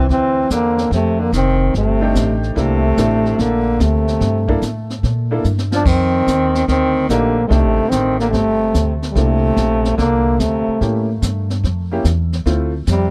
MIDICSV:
0, 0, Header, 1, 7, 480
1, 0, Start_track
1, 0, Tempo, 412088
1, 1076, Time_signature, 4, 2, 24, 8
1, 15264, End_track
2, 0, Start_track
2, 0, Title_t, "Upright piano"
2, 0, Program_c, 0, 0
2, 2341, Note_on_c, 0, 57, 70
2, 2348, Note_on_c, 0, 62, 66
2, 2354, Note_on_c, 0, 63, 62
2, 2359, Note_on_c, 0, 67, 80
2, 2953, Note_off_c, 0, 57, 0
2, 2957, Note_off_c, 0, 62, 0
2, 2960, Note_off_c, 0, 63, 0
2, 2963, Note_off_c, 0, 67, 0
2, 2977, Note_on_c, 0, 58, 63
2, 2982, Note_on_c, 0, 64, 54
2, 2984, Note_on_c, 0, 62, 54
2, 2993, Note_on_c, 0, 69, 69
2, 3274, Note_off_c, 0, 58, 0
2, 3276, Note_off_c, 0, 64, 0
2, 3277, Note_off_c, 0, 62, 0
2, 3282, Note_off_c, 0, 69, 0
2, 3462, Note_on_c, 0, 57, 66
2, 3469, Note_on_c, 0, 62, 60
2, 3477, Note_on_c, 0, 64, 65
2, 3478, Note_on_c, 0, 69, 76
2, 4203, Note_off_c, 0, 57, 0
2, 4207, Note_off_c, 0, 62, 0
2, 4211, Note_off_c, 0, 64, 0
2, 4211, Note_off_c, 0, 69, 0
2, 5217, Note_on_c, 0, 58, 75
2, 5226, Note_on_c, 0, 62, 69
2, 5230, Note_on_c, 0, 64, 70
2, 5232, Note_on_c, 0, 69, 85
2, 5366, Note_off_c, 0, 58, 0
2, 5371, Note_off_c, 0, 62, 0
2, 5373, Note_off_c, 0, 64, 0
2, 5374, Note_off_c, 0, 69, 0
2, 6184, Note_on_c, 0, 58, 73
2, 6189, Note_on_c, 0, 62, 65
2, 6192, Note_on_c, 0, 64, 63
2, 6198, Note_on_c, 0, 69, 73
2, 6330, Note_off_c, 0, 58, 0
2, 6332, Note_off_c, 0, 62, 0
2, 6334, Note_off_c, 0, 64, 0
2, 6337, Note_off_c, 0, 69, 0
2, 8260, Note_on_c, 0, 57, 61
2, 8269, Note_on_c, 0, 62, 51
2, 8270, Note_on_c, 0, 63, 53
2, 8279, Note_on_c, 0, 67, 60
2, 8555, Note_off_c, 0, 57, 0
2, 8560, Note_off_c, 0, 62, 0
2, 8560, Note_off_c, 0, 63, 0
2, 8565, Note_off_c, 0, 67, 0
2, 8736, Note_on_c, 0, 57, 57
2, 8740, Note_on_c, 0, 62, 52
2, 8747, Note_on_c, 0, 63, 55
2, 8752, Note_on_c, 0, 67, 66
2, 10091, Note_off_c, 0, 57, 0
2, 10093, Note_off_c, 0, 62, 0
2, 10096, Note_off_c, 0, 63, 0
2, 10099, Note_off_c, 0, 67, 0
2, 10669, Note_on_c, 0, 46, 55
2, 10676, Note_on_c, 0, 62, 46
2, 10680, Note_on_c, 0, 64, 46
2, 10682, Note_on_c, 0, 69, 51
2, 12019, Note_off_c, 0, 46, 0
2, 12023, Note_off_c, 0, 62, 0
2, 12025, Note_off_c, 0, 64, 0
2, 12026, Note_off_c, 0, 69, 0
2, 12589, Note_on_c, 0, 58, 51
2, 12591, Note_on_c, 0, 61, 48
2, 12599, Note_on_c, 0, 67, 59
2, 12600, Note_on_c, 0, 64, 52
2, 12883, Note_off_c, 0, 58, 0
2, 12884, Note_off_c, 0, 61, 0
2, 12889, Note_off_c, 0, 64, 0
2, 12889, Note_off_c, 0, 67, 0
2, 13878, Note_on_c, 0, 58, 64
2, 13887, Note_on_c, 0, 61, 61
2, 13892, Note_on_c, 0, 64, 65
2, 13894, Note_on_c, 0, 67, 76
2, 14022, Note_off_c, 0, 58, 0
2, 14027, Note_off_c, 0, 61, 0
2, 14029, Note_off_c, 0, 64, 0
2, 14030, Note_off_c, 0, 67, 0
2, 14510, Note_on_c, 0, 57, 65
2, 14515, Note_on_c, 0, 60, 59
2, 14520, Note_on_c, 0, 64, 61
2, 14521, Note_on_c, 0, 65, 69
2, 14805, Note_off_c, 0, 57, 0
2, 14807, Note_off_c, 0, 60, 0
2, 14810, Note_off_c, 0, 64, 0
2, 14810, Note_off_c, 0, 65, 0
2, 15264, End_track
3, 0, Start_track
3, 0, Title_t, "Trombone"
3, 0, Program_c, 1, 57
3, 140, Note_on_c, 1, 60, 95
3, 575, Note_off_c, 1, 60, 0
3, 616, Note_on_c, 1, 58, 90
3, 1053, Note_off_c, 1, 58, 0
3, 1097, Note_on_c, 1, 57, 78
3, 1425, Note_on_c, 1, 58, 78
3, 1443, Note_off_c, 1, 57, 0
3, 1569, Note_off_c, 1, 58, 0
3, 1574, Note_on_c, 1, 60, 82
3, 2010, Note_off_c, 1, 60, 0
3, 2066, Note_on_c, 1, 57, 81
3, 2804, Note_off_c, 1, 57, 0
3, 3012, Note_on_c, 1, 57, 86
3, 3975, Note_on_c, 1, 58, 82
3, 3993, Note_off_c, 1, 57, 0
3, 4454, Note_on_c, 1, 57, 78
3, 4471, Note_off_c, 1, 58, 0
3, 5401, Note_off_c, 1, 57, 0
3, 6692, Note_on_c, 1, 62, 90
3, 6844, Note_on_c, 1, 60, 103
3, 6861, Note_off_c, 1, 62, 0
3, 7789, Note_off_c, 1, 60, 0
3, 7796, Note_on_c, 1, 60, 97
3, 8240, Note_off_c, 1, 60, 0
3, 8266, Note_on_c, 1, 58, 85
3, 8665, Note_off_c, 1, 58, 0
3, 8702, Note_on_c, 1, 56, 62
3, 8726, Note_on_c, 1, 57, 92
3, 8744, Note_off_c, 1, 56, 0
3, 9197, Note_on_c, 1, 60, 91
3, 9215, Note_off_c, 1, 57, 0
3, 9537, Note_off_c, 1, 60, 0
3, 9547, Note_on_c, 1, 58, 80
3, 9667, Note_off_c, 1, 58, 0
3, 9674, Note_on_c, 1, 57, 87
3, 10450, Note_off_c, 1, 57, 0
3, 10621, Note_on_c, 1, 55, 60
3, 10654, Note_on_c, 1, 57, 91
3, 10672, Note_off_c, 1, 55, 0
3, 11622, Note_off_c, 1, 57, 0
3, 11629, Note_on_c, 1, 58, 85
3, 12112, Note_on_c, 1, 57, 76
3, 12129, Note_off_c, 1, 58, 0
3, 13076, Note_off_c, 1, 57, 0
3, 15021, Note_on_c, 1, 55, 84
3, 15264, Note_off_c, 1, 55, 0
3, 15264, End_track
4, 0, Start_track
4, 0, Title_t, "Tenor saxophone"
4, 0, Program_c, 2, 66
4, 112, Note_on_c, 2, 52, 67
4, 560, Note_off_c, 2, 52, 0
4, 586, Note_on_c, 2, 50, 72
4, 1036, Note_off_c, 2, 50, 0
4, 1081, Note_on_c, 2, 48, 75
4, 1397, Note_on_c, 2, 50, 65
4, 1414, Note_off_c, 2, 48, 0
4, 1545, Note_off_c, 2, 50, 0
4, 1552, Note_on_c, 2, 51, 69
4, 1999, Note_off_c, 2, 51, 0
4, 2050, Note_on_c, 2, 48, 67
4, 2795, Note_off_c, 2, 48, 0
4, 3008, Note_on_c, 2, 48, 80
4, 3965, Note_on_c, 2, 50, 67
4, 3982, Note_off_c, 2, 48, 0
4, 4439, Note_on_c, 2, 48, 62
4, 4456, Note_off_c, 2, 50, 0
4, 5394, Note_off_c, 2, 48, 0
4, 6664, Note_on_c, 2, 53, 79
4, 6809, Note_on_c, 2, 51, 82
4, 6826, Note_off_c, 2, 53, 0
4, 7765, Note_off_c, 2, 51, 0
4, 7772, Note_on_c, 2, 51, 78
4, 8227, Note_off_c, 2, 51, 0
4, 8264, Note_on_c, 2, 50, 74
4, 8664, Note_off_c, 2, 50, 0
4, 8715, Note_on_c, 2, 46, 57
4, 8737, Note_on_c, 2, 48, 73
4, 8754, Note_off_c, 2, 46, 0
4, 9208, Note_on_c, 2, 51, 70
4, 9225, Note_off_c, 2, 48, 0
4, 9542, Note_off_c, 2, 51, 0
4, 9547, Note_on_c, 2, 50, 65
4, 9690, Note_off_c, 2, 50, 0
4, 9697, Note_on_c, 2, 48, 67
4, 10461, Note_off_c, 2, 48, 0
4, 10644, Note_on_c, 2, 48, 75
4, 11609, Note_off_c, 2, 48, 0
4, 11616, Note_on_c, 2, 50, 64
4, 12115, Note_on_c, 2, 48, 63
4, 12133, Note_off_c, 2, 50, 0
4, 12597, Note_off_c, 2, 48, 0
4, 15009, Note_on_c, 2, 48, 66
4, 15264, Note_off_c, 2, 48, 0
4, 15264, End_track
5, 0, Start_track
5, 0, Title_t, "Upright bass"
5, 0, Program_c, 3, 32
5, 108, Note_on_c, 3, 38, 79
5, 577, Note_off_c, 3, 38, 0
5, 584, Note_on_c, 3, 40, 85
5, 1055, Note_off_c, 3, 40, 0
5, 1061, Note_on_c, 3, 41, 80
5, 1533, Note_off_c, 3, 41, 0
5, 1544, Note_on_c, 3, 29, 89
5, 2014, Note_off_c, 3, 29, 0
5, 2028, Note_on_c, 3, 31, 76
5, 2495, Note_off_c, 3, 31, 0
5, 2504, Note_on_c, 3, 33, 80
5, 2973, Note_off_c, 3, 33, 0
5, 2984, Note_on_c, 3, 36, 88
5, 3453, Note_off_c, 3, 36, 0
5, 3466, Note_on_c, 3, 33, 93
5, 3933, Note_off_c, 3, 33, 0
5, 3945, Note_on_c, 3, 34, 83
5, 4413, Note_off_c, 3, 34, 0
5, 4428, Note_on_c, 3, 38, 82
5, 4894, Note_off_c, 3, 38, 0
5, 4899, Note_on_c, 3, 43, 87
5, 5369, Note_off_c, 3, 43, 0
5, 5377, Note_on_c, 3, 45, 80
5, 5849, Note_off_c, 3, 45, 0
5, 5861, Note_on_c, 3, 46, 76
5, 6330, Note_off_c, 3, 46, 0
5, 6342, Note_on_c, 3, 43, 80
5, 6811, Note_off_c, 3, 43, 0
5, 6819, Note_on_c, 3, 41, 86
5, 7290, Note_off_c, 3, 41, 0
5, 7302, Note_on_c, 3, 39, 83
5, 7772, Note_off_c, 3, 39, 0
5, 7786, Note_on_c, 3, 38, 73
5, 8254, Note_off_c, 3, 38, 0
5, 8260, Note_on_c, 3, 34, 84
5, 8731, Note_off_c, 3, 34, 0
5, 8742, Note_on_c, 3, 36, 86
5, 8904, Note_off_c, 3, 36, 0
5, 8904, Note_on_c, 3, 33, 51
5, 9054, Note_off_c, 3, 33, 0
5, 9061, Note_on_c, 3, 29, 60
5, 9215, Note_off_c, 3, 29, 0
5, 9220, Note_on_c, 3, 33, 90
5, 9692, Note_off_c, 3, 33, 0
5, 9701, Note_on_c, 3, 31, 79
5, 10173, Note_off_c, 3, 31, 0
5, 10183, Note_on_c, 3, 38, 83
5, 10655, Note_off_c, 3, 38, 0
5, 10662, Note_on_c, 3, 36, 82
5, 11135, Note_off_c, 3, 36, 0
5, 11144, Note_on_c, 3, 34, 94
5, 11616, Note_off_c, 3, 34, 0
5, 11626, Note_on_c, 3, 36, 79
5, 12097, Note_off_c, 3, 36, 0
5, 12110, Note_on_c, 3, 38, 87
5, 12413, Note_off_c, 3, 38, 0
5, 12593, Note_on_c, 3, 45, 81
5, 13062, Note_off_c, 3, 45, 0
5, 13071, Note_on_c, 3, 43, 82
5, 13541, Note_off_c, 3, 43, 0
5, 13554, Note_on_c, 3, 41, 74
5, 14023, Note_off_c, 3, 41, 0
5, 14030, Note_on_c, 3, 40, 81
5, 14501, Note_off_c, 3, 40, 0
5, 14510, Note_on_c, 3, 38, 83
5, 14981, Note_off_c, 3, 38, 0
5, 14991, Note_on_c, 3, 41, 95
5, 15264, Note_off_c, 3, 41, 0
5, 15264, End_track
6, 0, Start_track
6, 0, Title_t, "Muted upright bass strokes"
6, 12440, Note_on_c, 9, 29, 35
6, 12556, Note_off_c, 9, 29, 0
6, 15264, End_track
7, 0, Start_track
7, 0, Title_t, "Drums"
7, 112, Note_on_c, 9, 36, 28
7, 117, Note_on_c, 9, 25, 53
7, 117, Note_on_c, 9, 38, 44
7, 228, Note_off_c, 9, 36, 0
7, 234, Note_off_c, 9, 38, 0
7, 585, Note_on_c, 9, 44, 53
7, 588, Note_on_c, 9, 38, 53
7, 589, Note_on_c, 9, 36, 17
7, 701, Note_off_c, 9, 44, 0
7, 705, Note_off_c, 9, 36, 0
7, 705, Note_off_c, 9, 38, 0
7, 908, Note_on_c, 9, 38, 37
7, 1025, Note_off_c, 9, 38, 0
7, 1068, Note_off_c, 9, 25, 0
7, 1068, Note_on_c, 9, 25, 45
7, 1068, Note_on_c, 9, 36, 21
7, 1068, Note_on_c, 9, 38, 40
7, 1184, Note_off_c, 9, 36, 0
7, 1184, Note_off_c, 9, 38, 0
7, 1548, Note_on_c, 9, 36, 21
7, 1548, Note_on_c, 9, 44, 55
7, 1551, Note_on_c, 9, 38, 53
7, 1664, Note_off_c, 9, 36, 0
7, 1664, Note_off_c, 9, 44, 0
7, 1668, Note_off_c, 9, 38, 0
7, 2028, Note_on_c, 9, 36, 18
7, 2032, Note_off_c, 9, 25, 0
7, 2032, Note_on_c, 9, 25, 48
7, 2032, Note_on_c, 9, 38, 45
7, 2144, Note_off_c, 9, 36, 0
7, 2148, Note_off_c, 9, 38, 0
7, 2507, Note_on_c, 9, 44, 49
7, 2509, Note_on_c, 9, 36, 19
7, 2510, Note_on_c, 9, 38, 57
7, 2623, Note_off_c, 9, 44, 0
7, 2625, Note_off_c, 9, 36, 0
7, 2627, Note_off_c, 9, 38, 0
7, 2831, Note_on_c, 9, 38, 37
7, 2947, Note_off_c, 9, 38, 0
7, 2988, Note_on_c, 9, 36, 20
7, 2992, Note_off_c, 9, 25, 0
7, 2992, Note_on_c, 9, 25, 45
7, 2992, Note_on_c, 9, 38, 38
7, 3104, Note_off_c, 9, 36, 0
7, 3109, Note_off_c, 9, 38, 0
7, 3465, Note_on_c, 9, 44, 58
7, 3468, Note_on_c, 9, 36, 17
7, 3468, Note_on_c, 9, 38, 53
7, 3581, Note_off_c, 9, 44, 0
7, 3584, Note_off_c, 9, 36, 0
7, 3585, Note_off_c, 9, 38, 0
7, 3790, Note_on_c, 9, 38, 35
7, 3907, Note_off_c, 9, 38, 0
7, 3948, Note_on_c, 9, 36, 20
7, 3949, Note_off_c, 9, 25, 0
7, 3949, Note_on_c, 9, 25, 53
7, 3949, Note_on_c, 9, 38, 46
7, 4064, Note_off_c, 9, 36, 0
7, 4066, Note_off_c, 9, 38, 0
7, 4425, Note_on_c, 9, 44, 49
7, 4427, Note_on_c, 9, 36, 20
7, 4429, Note_on_c, 9, 38, 54
7, 4542, Note_off_c, 9, 44, 0
7, 4544, Note_off_c, 9, 36, 0
7, 4545, Note_off_c, 9, 38, 0
7, 4747, Note_on_c, 9, 38, 38
7, 4863, Note_off_c, 9, 38, 0
7, 4902, Note_off_c, 9, 25, 0
7, 4902, Note_on_c, 9, 25, 52
7, 4902, Note_on_c, 9, 38, 44
7, 4904, Note_on_c, 9, 36, 16
7, 5018, Note_off_c, 9, 38, 0
7, 5020, Note_off_c, 9, 36, 0
7, 5225, Note_on_c, 9, 36, 51
7, 5342, Note_off_c, 9, 36, 0
7, 5379, Note_on_c, 9, 44, 55
7, 5382, Note_on_c, 9, 38, 53
7, 5383, Note_on_c, 9, 36, 20
7, 5495, Note_off_c, 9, 44, 0
7, 5499, Note_off_c, 9, 38, 0
7, 5500, Note_off_c, 9, 36, 0
7, 5707, Note_on_c, 9, 38, 38
7, 5824, Note_off_c, 9, 38, 0
7, 5863, Note_on_c, 9, 36, 26
7, 5865, Note_off_c, 9, 25, 0
7, 5865, Note_on_c, 9, 25, 50
7, 5865, Note_on_c, 9, 38, 45
7, 5980, Note_off_c, 9, 36, 0
7, 5982, Note_off_c, 9, 38, 0
7, 6338, Note_on_c, 9, 44, 47
7, 6454, Note_off_c, 9, 44, 0
7, 6504, Note_on_c, 9, 38, 53
7, 6620, Note_off_c, 9, 38, 0
7, 6663, Note_on_c, 9, 38, 77
7, 6780, Note_off_c, 9, 38, 0
7, 6822, Note_on_c, 9, 36, 71
7, 6824, Note_off_c, 9, 25, 0
7, 6824, Note_on_c, 9, 25, 50
7, 6824, Note_on_c, 9, 38, 40
7, 6824, Note_on_c, 9, 49, 65
7, 6938, Note_off_c, 9, 36, 0
7, 6940, Note_off_c, 9, 38, 0
7, 6940, Note_off_c, 9, 49, 0
7, 7303, Note_on_c, 9, 36, 22
7, 7304, Note_on_c, 9, 44, 46
7, 7308, Note_on_c, 9, 38, 49
7, 7420, Note_off_c, 9, 36, 0
7, 7421, Note_off_c, 9, 44, 0
7, 7424, Note_off_c, 9, 38, 0
7, 7627, Note_on_c, 9, 38, 41
7, 7744, Note_off_c, 9, 38, 0
7, 7783, Note_off_c, 9, 25, 0
7, 7783, Note_on_c, 9, 25, 47
7, 7783, Note_on_c, 9, 38, 45
7, 7784, Note_on_c, 9, 36, 20
7, 7899, Note_off_c, 9, 38, 0
7, 7900, Note_off_c, 9, 36, 0
7, 8263, Note_on_c, 9, 44, 45
7, 8265, Note_on_c, 9, 36, 18
7, 8266, Note_on_c, 9, 38, 57
7, 8379, Note_off_c, 9, 44, 0
7, 8382, Note_off_c, 9, 36, 0
7, 8383, Note_off_c, 9, 38, 0
7, 8746, Note_on_c, 9, 36, 24
7, 8747, Note_off_c, 9, 25, 0
7, 8747, Note_on_c, 9, 25, 42
7, 8747, Note_on_c, 9, 38, 43
7, 8862, Note_off_c, 9, 36, 0
7, 8864, Note_off_c, 9, 38, 0
7, 9218, Note_on_c, 9, 44, 47
7, 9221, Note_on_c, 9, 38, 56
7, 9225, Note_on_c, 9, 36, 18
7, 9334, Note_off_c, 9, 44, 0
7, 9338, Note_off_c, 9, 38, 0
7, 9341, Note_off_c, 9, 36, 0
7, 9548, Note_on_c, 9, 38, 36
7, 9664, Note_off_c, 9, 38, 0
7, 9705, Note_on_c, 9, 36, 24
7, 9707, Note_off_c, 9, 25, 0
7, 9707, Note_on_c, 9, 25, 45
7, 9707, Note_on_c, 9, 38, 46
7, 9822, Note_off_c, 9, 36, 0
7, 9823, Note_off_c, 9, 38, 0
7, 10183, Note_on_c, 9, 44, 44
7, 10187, Note_on_c, 9, 36, 16
7, 10187, Note_on_c, 9, 38, 54
7, 10300, Note_off_c, 9, 44, 0
7, 10303, Note_off_c, 9, 36, 0
7, 10303, Note_off_c, 9, 38, 0
7, 10510, Note_on_c, 9, 38, 40
7, 10627, Note_off_c, 9, 38, 0
7, 10665, Note_off_c, 9, 25, 0
7, 10665, Note_on_c, 9, 25, 53
7, 10665, Note_on_c, 9, 36, 24
7, 10665, Note_on_c, 9, 38, 42
7, 10782, Note_off_c, 9, 36, 0
7, 10782, Note_off_c, 9, 38, 0
7, 11143, Note_on_c, 9, 44, 46
7, 11145, Note_on_c, 9, 36, 22
7, 11147, Note_on_c, 9, 38, 58
7, 11260, Note_off_c, 9, 44, 0
7, 11262, Note_off_c, 9, 36, 0
7, 11263, Note_off_c, 9, 38, 0
7, 11469, Note_on_c, 9, 38, 40
7, 11585, Note_off_c, 9, 38, 0
7, 11628, Note_on_c, 9, 36, 21
7, 11630, Note_off_c, 9, 25, 0
7, 11630, Note_on_c, 9, 25, 50
7, 11630, Note_on_c, 9, 38, 43
7, 11745, Note_off_c, 9, 36, 0
7, 11746, Note_off_c, 9, 38, 0
7, 12111, Note_on_c, 9, 44, 55
7, 12112, Note_on_c, 9, 36, 17
7, 12115, Note_on_c, 9, 38, 54
7, 12228, Note_off_c, 9, 36, 0
7, 12228, Note_off_c, 9, 44, 0
7, 12231, Note_off_c, 9, 38, 0
7, 12593, Note_on_c, 9, 36, 21
7, 12596, Note_off_c, 9, 25, 0
7, 12596, Note_on_c, 9, 25, 48
7, 12596, Note_on_c, 9, 38, 40
7, 12710, Note_off_c, 9, 36, 0
7, 12713, Note_off_c, 9, 38, 0
7, 13071, Note_on_c, 9, 44, 54
7, 13074, Note_on_c, 9, 36, 22
7, 13074, Note_on_c, 9, 38, 51
7, 13187, Note_off_c, 9, 44, 0
7, 13191, Note_off_c, 9, 36, 0
7, 13191, Note_off_c, 9, 38, 0
7, 13394, Note_on_c, 9, 38, 38
7, 13510, Note_off_c, 9, 38, 0
7, 13556, Note_on_c, 9, 36, 21
7, 13558, Note_off_c, 9, 25, 0
7, 13558, Note_on_c, 9, 25, 47
7, 13558, Note_on_c, 9, 38, 45
7, 13672, Note_off_c, 9, 36, 0
7, 13674, Note_off_c, 9, 38, 0
7, 14030, Note_on_c, 9, 44, 50
7, 14033, Note_on_c, 9, 38, 54
7, 14036, Note_on_c, 9, 36, 23
7, 14146, Note_off_c, 9, 44, 0
7, 14150, Note_off_c, 9, 38, 0
7, 14152, Note_off_c, 9, 36, 0
7, 14357, Note_on_c, 9, 38, 40
7, 14474, Note_off_c, 9, 38, 0
7, 14513, Note_off_c, 9, 25, 0
7, 14513, Note_on_c, 9, 25, 49
7, 14513, Note_on_c, 9, 38, 45
7, 14517, Note_on_c, 9, 36, 22
7, 14629, Note_off_c, 9, 38, 0
7, 14634, Note_off_c, 9, 36, 0
7, 14988, Note_on_c, 9, 44, 54
7, 14991, Note_on_c, 9, 38, 54
7, 14997, Note_on_c, 9, 36, 19
7, 15104, Note_off_c, 9, 44, 0
7, 15108, Note_off_c, 9, 38, 0
7, 15113, Note_off_c, 9, 36, 0
7, 15264, Note_off_c, 9, 25, 0
7, 15264, End_track
0, 0, End_of_file